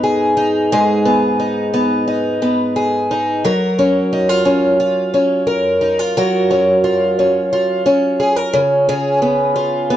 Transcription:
Already playing: G#2 B3 D#4
0.04 G#4
0.37 D#4
0.72 G#2 G#4
1.05 B3
1.40 D#4
1.74 B3
2.08 D#4
2.42 B3
2.76 G#4
3.11 D#4
3.45 F#3 A#4
3.79 C#4
4.13 D#4
4.29 F4
4.45 C#4
4.80 F4
5.14 C#4
5.47 A#4
5.81 D#4
5.99 F4
6.17 F#3 A#4
6.51 C#4
6.84 F4
7.19 C#4
7.53 F4
7.86 C#4
8.20 G#4
8.36 A#4
8.53 C#3
8.89 C#3 G#4
9.22 B3
9.56 F4
9.90 B3

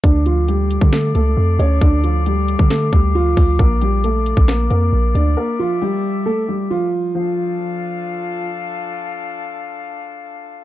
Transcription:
0.04 D2 D3 D4 A4 D5 F5 D6, kick, closed hi-hat
0.26 F3 F4, closed hi-hat
0.48 G3 G4, closed hi-hat
0.71 closed hi-hat
0.81 D3, kick
0.93 A3 A4, snare, closed hi-hat
1.15 C#2 A3 A4, closed hi-hat
1.37 F2
1.59 D2 C#4 C#5, closed hi-hat
1.81 D2 D3 D4, kick, closed hi-hat
2.04 F3 F4, closed hi-hat
2.26 G3 G4, closed hi-hat
2.48 closed hi-hat
2.59 D3, kick
2.70 A3 A4, snare, closed hi-hat
2.93 D2 G3 G4, kick, closed hi-hat
3.15 F3 F4
3.37 D2, kick, open hi-hat
3.59 A#1 A#3 F4 A#4 D5, kick, closed hi-hat
3.81 G3 G4, closed hi-hat
4.04 A3 A4, closed hi-hat
4.26 closed hi-hat
4.37 A#1, kick
4.48 A#3 A#4, snare, closed hi-hat
4.70 F2 A#3 A#4, closed hi-hat
4.93 A#1
5.15 D2 D4 D5, closed hi-hat
5.37 A#3 A#4 E5
5.59 F3 F4
5.82 G3 G4
6.26 A3 A4
6.48 G3 G4
6.70 F3 F4
7.15 F3 D4 F4 A4 F5

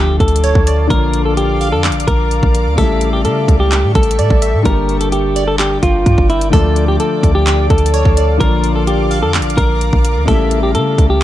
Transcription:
Already playing: D2 D3 F3 A3 F4 G4 A4 D5 F5 D6, impact
0.20 D2 A4, kick, closed hi-hat
0.28 closed hi-hat
0.36 closed hi-hat
0.44 C#5, closed hi-hat
0.55 D2, kick
0.67 D5, closed hi-hat
0.88 A#1 D3 F3 A#3 A#4, kick, closed hi-hat
0.93 F4
1.14 closed hi-hat
1.25 A4
1.37 G4, closed hi-hat
1.61 F5, open hi-hat
1.72 F2 A4
1.84 clap, closed hi-hat
1.90 A#1, closed hi-hat
2.00 closed hi-hat
2.08 A#1 A#4, kick, closed hi-hat
2.31 closed hi-hat
2.43 A#1, kick
2.55 closed hi-hat
2.66 D2
2.76 A1 C#3 G3 A3 A4 E5 G5 C#6, kick, closed hi-hat
2.81 E4
3.01 closed hi-hat
3.13 G4
3.25 C#3 A4, closed hi-hat
3.48 C#2, kick, closed hi-hat
3.60 G4
3.72 clap, closed hi-hat
3.84 A2
3.95 A1 A4, kick, closed hi-hat
4.03 closed hi-hat
4.11 closed hi-hat
4.19 A2 D5, closed hi-hat
4.30 A1, kick
4.42 E5, closed hi-hat
4.54 A2
4.63 G1 D3 G3 A#3 A#4 D5 G5 D6, kick, closed hi-hat
4.68 G4
4.89 closed hi-hat
5.01 A4, closed hi-hat
5.12 G4, closed hi-hat
5.36 D5, closed hi-hat
5.48 A4
5.59 G4, clap, closed hi-hat
5.83 G1 F4, kick, closed hi-hat
6.06 G2, kick, closed hi-hat
6.18 G1, kick
6.30 E4, closed hi-hat
6.41 closed hi-hat
6.50 D2 D3 F3 A3 A4 D5 F5, kick, closed hi-hat
6.56 F4
6.76 closed hi-hat
6.88 G4
7.00 A4, closed hi-hat
7.23 D2, kick, closed hi-hat
7.35 G4
7.47 clap, closed hi-hat
7.70 D2 A4, kick, closed hi-hat
7.78 closed hi-hat
7.86 closed hi-hat
7.94 C#5, closed hi-hat
8.05 D2, kick
8.17 D5, closed hi-hat
8.38 A#1 D3 F3 A#3 A#4 D6, kick, closed hi-hat
8.43 F4
8.64 closed hi-hat
8.76 A4
8.87 G4, closed hi-hat
9.11 F5, open hi-hat
9.23 F2 A4
9.34 clap, closed hi-hat
9.40 A#1, closed hi-hat
9.50 closed hi-hat
9.58 A#1 A#4, kick, closed hi-hat
9.81 closed hi-hat
9.93 A#1, kick
10.05 closed hi-hat
10.16 D2
10.25 A1 C#3 G3 A3 A4 E5 G5 C#6, kick, closed hi-hat
10.31 E4
10.51 closed hi-hat
10.63 G4
10.75 C#3 A4, closed hi-hat
10.98 C#2, kick, closed hi-hat
11.10 G4

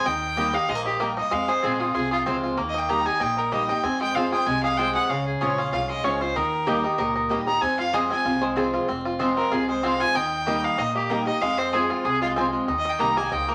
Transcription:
0.06 D#2 D#3 D#4 G5
0.37 G3 A#3 D#4 G4 D#5 G5
0.53 D#4 G4 F5
0.69 A#1 G#2 G#3 D#5
0.75 A#3
0.86 D#4 G4
1.00 G2 A#3 G4 A#4 D#5 G5
1.17 D#4 D#5
1.31 F2 G#3 F5
1.48 G#4 C5
1.63 A#1 F3 G#3 C4 F4 G#4 C5 G#5
1.80 C4 F4 G#4
1.95 C2 C3 F4 G#4
2.11 F4 G#4
2.26 C#2 F3 G#3 C4 F4 C5 G#5
2.43 F4
2.57 D#2 D#3 A#3
2.69 D#5
2.74 D#4
2.78 G5
2.89 G3 A#3 D#4 G4 D#5 G5 A#5
3.06 D#4 G4 G#5
3.20 A#1 A#2 D#4 G5
3.37 D#4 A#4
3.51 G3 A#3 D#4 G4 D#5 G5
3.68 D#4 G4 G5
3.83 F2 C4 G#5
4.01 G#3 G5
4.15 F3 G#3 C4 F4 C5 F5 G#5
4.32 C4 F4 G#4 G5
4.46 C2 C3 G#3 G#5
4.63 G#4 F5
4.77 F3 G#3 C4 F4 C5 G5 G#5
4.95 G#4 F#5
5.10 C#2 C#3 C#4 F5
5.26 G#4
5.41 A#1 F3 G#3 C#4 F4 G#4 C#5 G#5
5.57 C#4 F4 F5
5.72 C2 G#2 F4 F5
5.89 G#3 D#5
6.03 C#2 F3 G#3 C#4 F4 C#5 G#5
6.20 C#4 F4 C5
6.36 D#2 D#3 D#4 A#4
6.66 G3 A#3 D#4 G4 D#5 G5
6.83 D#4 G4
6.98 C#2 A#2 D#4 A#4
7.16 D#4
7.29 D#2 G3 A#3 D#4 G4 D#5 G5
7.46 D#4 G4 A#5
7.61 F2 C4 G#5
7.79 F4 F5
7.92 F3 G#3 C4 F4 G#4 C5 D#5 G#5
8.10 C4 F4 G#5
8.25 C2 C3 F4
8.42 G#3 C5
8.56 F3 G#3 C4 F4 G#4 C5 G#5
8.74 F4
8.88 F1 F2 C4
9.05 F4
9.19 F3 G#3 C4 F4 C5 G#5
9.37 C4 A#4
9.52 C2 C3 F4 G#4
9.69 G#3 C5
9.83 F3 G#3 C4 F4 C5 F5 G#5
10.00 F4 G#5
10.15 D#2 D#3 D#4 G5
10.46 G3 A#3 D#4 G4 D#5 G5
10.64 D#4 F5
10.78 A#1 A#2 D#4 D#5
10.95 A#3 G4
11.10 G3 A#3 D#4 G4 A#4 D#5 G5
11.26 D#4 G4 D#5
11.41 F2 G#3 F5
11.58 C4 C5
11.73 F3 G#3 C4 F4 G#4 C5 G#5
11.90 F4
12.05 C2 C3 G#4
12.21 G#3 F4
12.36 F3 G#3 C4 F4 C5 G#5
12.53 G#3
12.68 D#2 D#3 D#4
12.79 D#5
12.85 D#4
12.89 G5
12.99 C2 G3 A#3 D#4 G4 D#5 G5 A#5
13.17 A#3 D#4 G4 G#5
13.31 C#2 G#2 D#4 G5
13.48 A#3 A#4

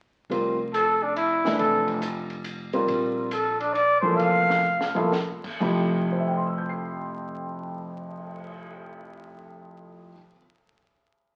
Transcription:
0.30 F1 G3 C4 F4 A#4, ride
0.74 A4, hi-hat pedal, ride
1.03 D4
1.16 E4, ride
1.45 E3 A3 D4 E4, snare
1.59 F1 A4, ride
1.88 kick, ride
2.02 hi-hat pedal, ride
2.30 ride
2.44 hi-hat pedal, ride
2.73 G3 C4 F4 A#4, ride
2.87 A#1, ride
3.31 A4, hi-hat pedal, ride
3.60 D4, ride
3.74 D5, ride
4.00 E3 F3 A#3 C5
4.05 A4
4.16 F1 F5, ride
4.50 snare
4.64 hi-hat pedal
4.81 snare
4.95 F3 A#3 E4 A4, floor tom
5.12 snare
5.44 muted upright bass stroke, kick, crash
5.60 F1 F2 F3 A3 E4 G4, kick, crash
5.94 cymbal swell
6.12 C5
6.20 E5
6.27 G5
6.37 C6
6.47 E6
6.58 G6
6.69 C7

